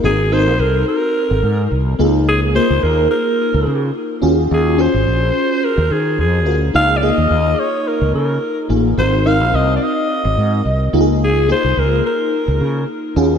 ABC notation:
X:1
M:4/4
L:1/16
Q:"Swing 16ths" 1/4=107
K:Db
V:1 name="Alto saxophone"
A2 c2 B2 B6 z4 | A2 c2 B2 B6 z4 | A2 c6 B2 A2 A3 z | f3/2 =d/2 e4 _d2 B2 B4 z2 |
c2 f2 e3/2 =d/2 e8 z2 | A2 c2 B2 B6 z4 |]
V:2 name="FM electric piano"
[CEGB]2 [CEG=AB]8 z4 [B,EF_A]2- | [B,EFA]2 [B,EFB]8 z4 [DFGA]2- | [DFGA]2 [DFGA]8 z4 [DFGB]2 | [B,EFA]2 [B,EFA]8 z4 [B,EFA]2 |
[CEGB]2 [CEGB]8 z4 [B,EF=GA]2- | [B,EF=GA]2 [B,EFA]8 z4 [DF_GA]2 |]
V:3 name="Fretless electric bass" clef=bass
A,,,3 B,,, C,,2 z3 A,,, A,,2 C,,2 D,,2- | D,,3 D,, E,,2 z3 D,, D,2 z2 E,,2 | E,,3 A,,, B,,,2 z3 E,, E,2 F,,2 =D,,2 | D,,3 E,, E,,2 z3 D,, D,2 z2 =A,,,2 |
A,,,3 B,,, C,,2 z3 A,,, A,,2 C,,2 D,,2- | D,,3 C,, D,,2 z3 D,, D,2 z2 E,,2 |]